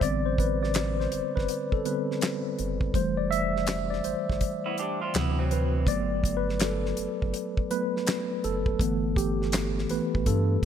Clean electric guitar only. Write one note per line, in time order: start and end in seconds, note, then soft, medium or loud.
4.66 4.78 B3 medium
4.66 4.78 E4 medium
4.79 5.00 D4 medium
4.79 5.00 G4 medium
5.02 5.14 C4 medium
5.02 5.14 F4 medium
5.16 5.37 B3 medium
5.16 5.37 E4 medium
5.39 5.86 F#3 medium
5.39 5.86 C4 medium